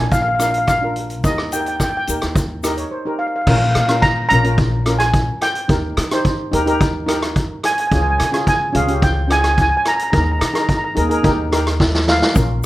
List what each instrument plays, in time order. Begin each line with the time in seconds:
Already playing: steel pan D4 F4 A#4 G#5
0.00 upright bass A#1
0.11 steel pan F5, kick, closed hi-hat, shaker
0.22 steel pan F5
0.28 steel pan F5
0.35 steel pan F5
0.39 steel pan D4 F4 A#4 F5, cross-stick, closed hi-hat, shaker
0.51 steel pan F5, closed hi-hat
0.58 steel pan F5
0.67 steel pan F5, kick, cross-stick, closed hi-hat, shaker
0.81 steel pan D4 F4 A#4
0.96 closed hi-hat
1.10 closed hi-hat, shaker
1.24 upright bass D#2, steel pan D#4 G4 A#4 D#5, kick, closed hi-hat, shaker
1.38 cross-stick
1.52 steel pan D#4 G4 A#4 G5, closed hi-hat, shaker
1.61 steel pan G5
1.66 steel pan G5, closed hi-hat, shaker
1.76 steel pan G5, kick, cross-stick, closed hi-hat
1.81 steel pan G5, shaker
1.90 steel pan G5
1.97 steel pan G5
2.07 upright bass D#2, steel pan D#4 G4 A#4, closed hi-hat, shaker
2.22 upright bass D#2, cross-stick, closed hi-hat, shaker
2.35 kick, closed hi-hat, shaker
2.63 steel pan D#4 G4 A#4 D#5, cross-stick, closed hi-hat, shaker
2.77 steel pan C#5, closed hi-hat, shaker
2.91 steel pan C5
3.06 steel pan D#4 G4 A#4
3.19 steel pan F5
3.27 steel pan F5
3.36 steel pan F5
3.42 steel pan F5
3.47 upright bass A#1, steel pan C#4 F4 A#4 F5, kick, crash
3.58 steel pan F5
3.64 steel pan F5
3.71 steel pan F5, cross-stick, closed hi-hat
3.75 upright bass A#2
3.80 steel pan F5
3.87 steel pan C#4 F4 A#4 F5, cross-stick, closed hi-hat
4.02 steel pan A#5, kick, closed hi-hat
4.29 upright bass A#1, steel pan C#4 F4 A#5, closed hi-hat
4.33 steel pan A#4
4.43 steel pan C#4 F4 A#4, closed hi-hat
4.58 kick, closed hi-hat
4.86 steel pan C#4 F4 A#4, cross-stick, closed hi-hat
4.99 steel pan G#5, cross-stick, closed hi-hat
5.13 kick, closed hi-hat
5.41 steel pan G5, cross-stick, closed hi-hat
5.55 closed hi-hat
5.68 upright bass D#2, steel pan D#4 G4 A#4, kick, closed hi-hat
5.97 upright bass D#3, cross-stick, closed hi-hat
6.11 steel pan D#4 G4 C5, cross-stick, closed hi-hat
6.25 kick, closed hi-hat
6.52 upright bass D#2, steel pan D#4 G4 A#4, closed hi-hat
6.66 steel pan D#4 G4 A#4, closed hi-hat
6.81 kick, closed hi-hat
7.06 steel pan D#4 G4 A#4, cross-stick, closed hi-hat
7.22 cross-stick, closed hi-hat
7.36 kick, closed hi-hat
7.63 steel pan G#5, cross-stick, closed hi-hat
7.73 steel pan G#5
7.78 steel pan G#5, closed hi-hat
7.87 steel pan G#5
7.91 upright bass C#2, steel pan C#4 F4 G#4 G#5, kick, closed hi-hat
8.02 steel pan G#5
8.10 steel pan G#5
8.18 upright bass C#3, steel pan G#5, cross-stick, closed hi-hat
8.25 steel pan G#5
8.32 steel pan C#4 F4 G#4 G#5, cross-stick, closed hi-hat
8.47 steel pan G#5, kick, closed hi-hat
8.73 upright bass C#2, steel pan C#4 F4 G#4 F5, closed hi-hat
8.87 steel pan C#4 F4 G4, closed hi-hat
9.02 steel pan G5, kick, closed hi-hat
9.28 steel pan C#4 F4 G#4, cross-stick, closed hi-hat
9.32 steel pan G#5
9.41 steel pan G#5, cross-stick, closed hi-hat
9.47 steel pan G#5
9.54 steel pan G#5, kick, closed hi-hat
9.62 steel pan G#5
9.70 steel pan G#5
9.77 steel pan G#5
9.85 steel pan A#5, cross-stick, closed hi-hat
9.99 steel pan A#5, closed hi-hat
10.10 upright bass D#2, steel pan D#4 G#4 A#4 A#5, kick, closed hi-hat
10.18 steel pan A#5
10.24 steel pan A#5
10.32 steel pan A#5
10.39 upright bass D#3, steel pan A#5, cross-stick, closed hi-hat
10.46 steel pan A#5
10.54 steel pan D#4 G#4 A#4 A#5, cross-stick, closed hi-hat
10.62 steel pan A#5
10.69 steel pan A#5, kick, closed hi-hat
10.77 steel pan A#5
10.84 steel pan A#5
10.95 upright bass D#2, steel pan D#4 G#4 A#4, closed hi-hat
11.09 steel pan D#4 G#4 A#4, closed hi-hat
11.23 upright bass D#2, steel pan D#4 G4 A#4, kick, closed hi-hat
11.52 steel pan D#4 G4 A#4, cross-stick, closed hi-hat
11.67 cross-stick, closed hi-hat
11.80 kick, snare
11.94 snare
12.08 steel pan F5, snare
12.22 snare
12.35 upright bass A#1, steel pan C#4 F4 A#4, kick, closed hi-hat, shaker